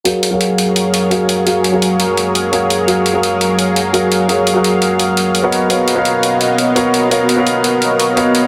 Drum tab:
HH |xxxxxxxx|xxxxxxxx|xxxxxxxx|xxxxxxxx|

HH |xxxxxxxx|xxxxxxxx|